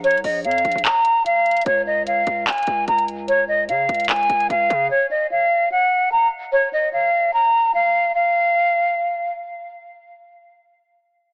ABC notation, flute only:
X:1
M:4/4
L:1/8
Q:1/4=148
K:Db
V:1 name="Flute"
d e f2 b2 f2 | d e f2 a2 b z | d e f2 a2 f2 | d e f2 g2 b z |
d e f2 b2 f2 | f6 z2 | z8 |]